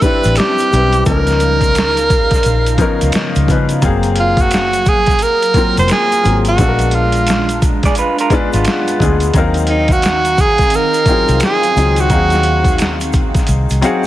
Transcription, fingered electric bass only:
0.03 muted fingered electric bass stroke medium
0.25 0.37 A1 loud
0.73 1.04 B1 medium
1.07 2.27 C#2 loud
2.46 2.77 A#1 medium
2.79 muted fingered electric bass stroke soft
3.02 3.13 C#2 medium
3.36 3.47 C#2 medium
3.49 3.85 C#3 medium
3.83 5.04 F#1 loud
5.55 muted fingered electric bass stroke medium
5.78 5.89 F1 medium
6.25 6.56 G#1 medium
6.59 7.79 A#1 loud
8.31 muted fingered electric bass stroke soft
8.54 8.65 G#1 loud
9.01 9.32 D2 loud
9.35 10.55 D#2 loud
11.06 muted fingered electric bass stroke medium
11.29 11.40 C2 medium
11.76 12.07 C#2 medium
12.11 13.31 D#2 loud
13.48 13.68 C2 loud
13.70 13.82 C2 medium

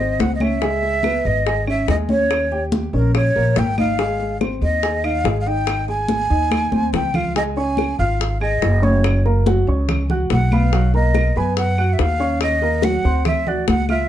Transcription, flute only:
0.00 0.22 D#5 medium
0.21 0.34 F#5 medium
0.35 0.44 D#5 medium
0.42 1.28 E5 loud
1.26 1.68 D#5 medium
1.69 1.88 E5 medium
1.90 1.96 D#5 medium
2.11 2.63 C#5 medium
2.95 3.14 A#4 medium
3.16 3.60 C#5 medium
3.58 3.78 G5 loud
3.79 4.38 F5 loud
4.63 5.06 D#5 medium
5.05 5.40 F5 loud
5.41 5.49 F5 medium
5.47 5.88 G5 loud
5.89 6.90 G#5 loud
6.95 7.17 G5 medium
7.16 7.36 F5 medium
7.37 7.43 D#5 loud
7.58 7.97 G#5 loud
7.99 8.38 F5 medium
8.42 8.85 D#5 medium
8.84 9.26 C#5 medium
10.32 10.55 F#5 medium
10.53 10.95 F5 loud
10.95 11.39 D#5 loud
11.37 11.57 G#5 medium
11.58 11.95 F#5 loud
11.93 12.02 E5 medium
12.01 12.42 F5 loud
12.43 12.86 D#5 loud
12.84 13.26 F#5 medium
13.27 13.49 E5 medium
13.48 13.68 D5 medium
13.69 13.88 F#5 medium
13.90 14.09 E5 medium

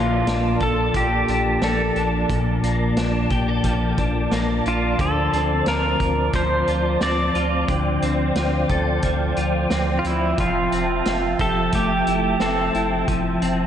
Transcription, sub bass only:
0.00 0.23 A#1 medium
0.27 0.57 A#1 medium
0.61 0.90 A#1 medium
0.95 1.24 A#1 loud
1.28 1.58 A#1 medium
1.62 1.92 A#1 medium
1.96 2.25 A#1 loud
2.30 2.59 A#1 loud
2.63 2.93 A#1 medium
2.97 3.26 A#1 medium
3.31 3.60 A#1 medium
3.64 3.94 A#1 loud
3.98 4.28 A#1 medium
4.32 4.61 A#1 loud
4.66 4.95 A#1 loud
4.99 5.29 D2 medium
5.33 5.62 D2 medium
5.66 5.96 D2 medium
6.00 6.30 D2 loud
6.34 6.63 D2 loud
6.68 6.97 D2 loud
7.02 7.31 D2 medium
7.35 7.65 D2 medium
7.69 7.98 D2 loud
8.02 8.32 D2 medium
8.36 8.66 D2 medium
8.70 8.99 D2 loud
9.03 9.33 D2 loud
9.37 9.67 D2 medium
9.71 10.01 D2 loud
10.05 10.34 D2 medium
10.38 10.68 F1 loud
10.72 11.02 F1 loud
11.06 11.36 F1 medium
11.40 11.69 F1 loud
11.73 12.03 F1 loud
12.07 12.37 F1 medium
12.41 12.70 F1 loud
12.75 13.04 F1 medium
13.08 13.38 F1 medium
13.42 13.67 F1 medium

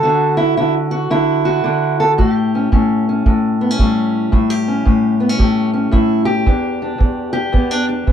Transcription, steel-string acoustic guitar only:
0.00 0.90 F#4 medium
0.00 0.37 A4 medium
0.05 0.57 D3 medium
0.37 0.56 E4 medium
0.57 1.09 D3 medium
0.57 0.73 E4 medium
0.91 1.44 F#4 medium
1.10 1.63 D3 medium
1.10 2.00 E4 medium
1.45 2.18 F#4 medium
1.64 2.18 D3 medium
1.64 2.16 D4 soft
2.00 2.11 A4 medium
2.18 2.71 A2 medium
2.18 3.79 G4 medium
2.55 2.72 C#4 soft
2.72 3.26 A2 medium
2.72 3.08 C#4 soft
3.09 3.61 C#4 soft
3.26 3.78 A2 medium
3.61 3.71 B3 soft
3.71 4.33 C#4 soft
3.79 4.31 A2 medium
3.79 6.47 G3 soft
4.32 4.84 A2 medium
4.32 4.50 E4 soft
4.50 5.38 G4 soft
4.68 5.20 C#4 soft
4.85 5.37 A2 medium
5.20 5.29 B3 soft
5.29 5.72 C#4 soft
5.39 5.90 A2 medium
5.39 5.92 G4 soft
5.74 6.44 C#4 soft
5.91 6.46 A2 medium
5.91 6.25 E4 medium
6.25 7.32 G4 medium
6.46 6.98 E2 medium
6.46 6.82 D4 medium
6.82 7.52 D4 soft
6.98 7.52 E2 medium
7.33 8.12 G4 medium
7.52 8.06 E2 medium
7.52 7.71 B3 soft
7.71 7.87 D4 soft
7.89 8.12 D4 soft
8.07 8.12 E2 medium

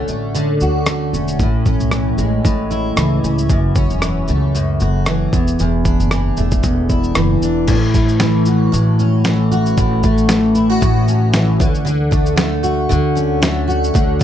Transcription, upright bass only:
0.09 0.57 A1 medium
0.61 1.10 D2 medium
1.13 1.38 E1 medium
1.39 1.77 A1 loud
1.80 2.15 B1 medium
2.18 2.42 A1 medium
2.45 2.93 A1 loud
2.97 3.21 C#2 medium
3.24 3.48 C#2 medium
3.50 3.87 F#1 medium
3.91 4.26 E1 medium
4.29 4.77 C#2 medium
4.82 5.30 F#1 loud
5.33 5.57 E1 medium
5.60 5.97 E1 medium
6.00 6.35 F#1 medium
6.37 6.62 E1 loud
6.64 7.12 E1 loud
7.17 7.40 F#1 loud
7.42 7.66 E1 medium
7.68 8.69 A1 loud
8.73 9.74 A1 loud
9.78 10.78 A1 loud
10.82 11.57 A1 loud
11.60 12.87 D2 medium
12.92 13.92 D2 loud
13.95 14.24 D2 loud

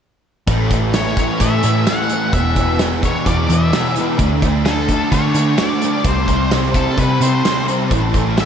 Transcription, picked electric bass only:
0.47 1.29 A1 medium
1.40 1.61 A2 medium
1.64 1.85 A2 medium
2.33 3.15 E1 loud
3.26 3.47 E2 medium
3.49 3.70 E2 loud
4.19 5.01 D2 medium
5.12 5.33 D3 medium
5.35 5.55 D3 medium
6.05 6.87 C2 medium
6.97 7.18 C3 medium
7.21 7.41 C3 medium
7.91 8.45 A1 medium

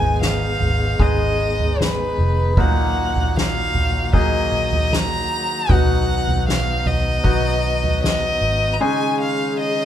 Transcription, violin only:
0.00 0.21 G#5 medium
0.23 1.03 F5 medium
1.02 1.83 D#5 medium
1.81 2.61 B4 medium
2.60 3.38 F#5 medium
3.37 4.14 F5 medium
4.16 4.95 D#5 medium
4.93 5.73 A#5 loud
5.71 6.48 F#5 medium
6.48 6.88 F5 medium
6.87 8.03 D#5 medium
8.04 8.75 D#5 medium
8.74 8.83 A#5 medium
8.81 9.20 G#5 medium
9.21 9.57 F5 medium
9.60 9.85 D#5 medium

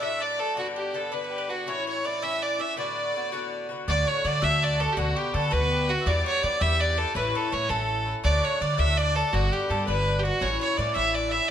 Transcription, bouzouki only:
0.01 0.39 A2 soft
0.01 0.39 F#3 medium
0.01 0.38 A3 medium
0.01 0.37 D4 medium
0.38 0.56 F#3 soft
0.38 0.57 A3 soft
0.38 0.56 D4 soft
0.56 0.92 G2 medium
0.56 0.93 D3 medium
0.56 0.94 B3 medium
0.56 0.94 D4 medium
0.93 1.11 G2 soft
0.93 1.12 D3 medium
0.93 1.11 B3 medium
0.93 1.10 D4 medium
1.12 1.50 G2 medium
1.12 1.50 D3 medium
1.12 1.49 B3 medium
1.12 1.48 D4 medium
1.49 1.67 D3 soft
1.49 1.67 B3 soft
1.49 1.67 D4 soft
1.66 2.03 A2 medium
1.66 2.03 E3 medium
1.66 2.05 C#4 medium
1.66 2.05 E4 medium
2.04 2.22 A2 medium
2.04 2.22 E3 medium
2.04 2.22 C#4 medium
2.04 2.21 E4 medium
2.22 2.60 A2 medium
2.22 2.60 E3 medium
2.22 2.58 C#4 medium
2.22 2.57 E4 medium
2.59 2.77 E3 soft
2.59 2.77 C#4 soft
2.59 2.77 E4 soft
2.76 3.13 A2 medium
2.76 3.15 D3 medium
2.76 3.15 B3 medium
2.76 3.16 F#4 medium
3.14 3.32 A2 medium
3.14 3.32 D3 medium
3.14 3.31 B3 medium
3.14 3.31 F#4 medium
3.32 3.71 A2 medium
3.32 3.71 D3 medium
3.32 3.69 B3 medium
3.32 3.69 F#4 medium
3.69 3.87 D3 medium
3.69 3.88 B3 soft
3.69 3.87 F#4 medium
3.88 4.23 A2 medium
3.88 4.24 D3 medium
3.88 4.25 A3 medium
3.88 4.26 F#4 medium
4.25 4.43 A2 medium
4.25 4.42 D3 medium
4.25 4.42 A3 medium
4.25 4.41 F#4 medium
4.42 4.80 A2 medium
4.42 4.80 D3 medium
4.42 4.80 A3 medium
4.42 4.78 F#4 medium
4.80 4.96 D3 soft
4.80 4.98 A3 soft
4.80 4.97 F#4 soft
4.97 5.32 B2 medium
4.97 5.33 D3 medium
4.97 5.34 B3 medium
4.97 5.35 F#4 medium
5.34 5.52 B2 medium
5.34 5.52 D3 medium
5.34 5.51 B3 medium
5.34 5.50 F#4 medium
5.51 5.90 B2 medium
5.51 5.89 D3 medium
5.51 5.88 B3 medium
5.51 5.87 F#4 medium
5.88 6.06 D3 soft
5.88 6.06 B3 soft
5.88 6.06 F#4 medium
6.06 6.41 G2 medium
6.06 6.42 E3 medium
6.06 6.43 B3 medium
6.06 6.44 G4 medium
6.42 6.61 G2 medium
6.42 6.61 E3 medium
6.42 6.60 B3 medium
6.42 6.59 G4 medium
6.61 6.99 G2 medium
6.61 6.98 E3 medium
6.61 6.98 B3 medium
6.61 6.96 G4 medium
6.97 7.14 E3 soft
6.97 7.15 B3 soft
6.97 7.15 G4 soft
7.14 7.49 A2 medium
7.14 7.51 E3 medium
7.14 7.51 C#4 medium
7.14 7.52 E4 medium
7.51 7.69 A2 medium
7.51 7.69 E3 medium
7.51 7.68 C#4 medium
7.51 7.68 E4 medium
7.69 8.07 A2 medium
7.69 8.07 E3 medium
7.69 8.06 C#4 medium
7.69 8.04 E4 medium
8.06 8.24 E3 soft
8.06 8.24 C#4 soft
8.06 8.24 E4 medium
8.23 8.59 A2 medium
8.23 8.60 F#3 medium
8.23 8.60 A3 medium
8.23 8.61 D4 medium
8.60 8.78 A2 medium
8.60 8.78 F#3 medium
8.60 8.77 A3 medium
8.60 8.77 D4 medium
8.78 9.16 A2 medium
8.78 9.16 F#3 medium
8.78 9.15 A3 medium
8.78 9.13 D4 medium
9.14 9.32 F#3 soft
9.14 9.33 A3 medium
9.14 9.33 D4 medium
9.32 9.67 G2 medium
9.32 9.68 D3 medium
9.32 9.69 B3 medium
9.32 9.70 D4 medium
9.69 9.87 G2 medium
9.69 9.87 D3 medium
9.69 9.86 B3 medium
9.69 9.86 D4 medium
9.87 10.25 G2 medium
9.87 10.24 D3 medium
9.87 10.24 B3 medium
9.87 10.22 D4 medium
10.23 10.41 D3 soft
10.23 10.41 B3 medium
10.23 10.41 D4 medium
10.40 10.76 A2 medium
10.40 10.77 E3 medium
10.40 10.78 C#4 medium
10.40 10.79 E4 medium
10.77 10.95 A2 medium
10.77 10.94 E3 medium
10.77 10.94 C#4 medium
10.77 10.93 E4 medium
10.94 11.33 A2 medium
10.94 11.32 E3 medium
10.94 11.31 C#4 medium
10.94 11.30 E4 medium
11.31 11.49 E3 soft
11.31 11.49 C#4 soft
11.31 11.49 E4 soft

